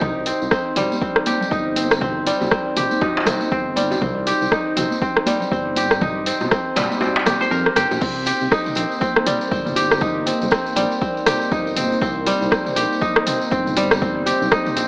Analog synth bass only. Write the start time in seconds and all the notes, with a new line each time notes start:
0.02 C2
0.42 C2
0.76 A#1
1.52 G1
2.42 C2
2.77 A#1
3.52 G1
4.02 C2
4.42 C2
4.77 A#1
5.52 G1
6.41 C2
6.77 A#1
7.51 F2
7.77 G1
7.91 A#1
8.02 C2
8.41 C2
8.77 A#1
9.52 G1
10.42 C2
10.77 A#1
11.52 G1
12.02 C2
12.41 C2
12.77 A#1
13.52 G1
14.41 C2
14.76 A#1